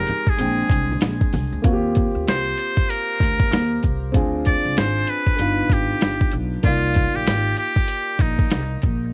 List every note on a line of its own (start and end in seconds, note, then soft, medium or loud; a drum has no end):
0.00 0.36 G#3 medium
0.00 0.36 C4 medium
0.00 0.37 D#4 medium
0.00 0.38 G4 medium
0.00 0.31 A#4 medium
0.07 closed hi-hat medium
0.07 low conga medium
0.07 maracas soft
0.27 1.22 G#4 medium
0.27 kick medium
0.27 maracas soft
0.37 0.64 A#1 loud
0.37 1.61 G#3 medium
0.37 1.61 C4 medium
0.37 1.62 D4 medium
0.37 1.62 G5 medium
0.37 closed hi-hat medium
0.37 maracas medium
0.61 maracas soft
0.70 0.95 C2 medium
0.70 kick medium
0.70 closed hi-hat medium
0.70 maracas soft
0.92 high conga medium
0.92 maracas soft
1.01 1.18 A#1 medium
1.01 snare loud
1.01 closed hi-hat medium
1.01 maracas medium
1.21 kick medium
1.21 maracas soft
1.33 1.49 C2 medium
1.33 open hi-hat soft
1.33 high conga medium
1.33 low conga medium
1.33 maracas medium
1.52 1.62 D2 medium
1.52 maracas soft
1.62 2.05 D#2 loud
1.62 4.09 A#3 medium
1.62 4.10 C4 medium
1.62 4.10 F4 medium
1.62 kick loud
1.62 closed hi-hat medium
1.66 1.73 F#4 medium
1.72 4.14 G4 medium
1.95 kick medium
1.95 closed hi-hat medium
2.15 2.24 D2 medium
2.27 2.52 C2 medium
2.27 2.91 C5 loud
2.27 snare loud
2.27 closed hi-hat medium
2.58 closed hi-hat medium
2.77 kick medium
2.89 3.83 A#4 loud
2.89 closed hi-hat medium
3.20 3.45 D2 medium
3.20 kick medium
3.20 closed hi-hat medium
3.40 kick medium
3.51 3.76 D#2 loud
3.51 snare loud
3.51 closed hi-hat medium
3.83 4.15 C2 medium
3.83 kick medium
3.83 closed hi-hat medium
4.12 4.55 D2 loud
4.12 5.35 C4 medium
4.12 5.36 D4 medium
4.12 5.37 F4 medium
4.12 kick loud
4.12 closed hi-hat medium
4.16 5.38 G#4 medium
4.45 4.80 D5 loud
4.45 kick medium
4.45 closed hi-hat medium
4.65 4.74 C2 medium
4.77 5.02 G#1 medium
4.77 5.11 C5 loud
4.77 snare loud
4.77 closed hi-hat medium
5.07 5.75 B4 medium
5.07 closed hi-hat medium
5.27 kick medium
5.37 5.64 G1 medium
5.37 6.60 B3 medium
5.37 6.61 D4 medium
5.37 6.62 D#4 medium
5.37 closed hi-hat medium
5.41 6.63 F4 medium
5.70 5.95 G#1 medium
5.70 6.34 G4 medium
5.70 kick medium
5.70 closed hi-hat medium
6.01 6.27 G1 medium
6.01 snare loud
6.01 closed hi-hat medium
6.21 kick loud
6.32 6.58 B1 medium
6.32 closed hi-hat medium
6.63 7.04 C2 loud
6.63 9.09 A#3 medium
6.63 9.11 D#4 medium
6.63 7.18 F4 loud
6.63 9.11 F4 medium
6.63 9.10 D5 medium
6.63 kick loud
6.63 closed hi-hat medium
6.94 kick medium
6.94 closed hi-hat medium
7.15 7.24 A#1 medium
7.15 7.57 G4 loud
7.27 7.52 G#1 medium
7.27 snare loud
7.27 closed hi-hat medium
7.57 8.23 G4 loud
7.57 closed hi-hat medium
7.76 kick medium
7.88 closed hi-hat medium
8.19 8.45 A#1 medium
8.19 8.83 D#4 medium
8.19 kick medium
8.19 closed hi-hat medium
8.39 kick medium
8.51 8.77 C2 medium
8.51 snare loud
8.51 closed hi-hat medium
8.82 9.13 A#1 medium
8.82 kick medium
8.82 closed hi-hat medium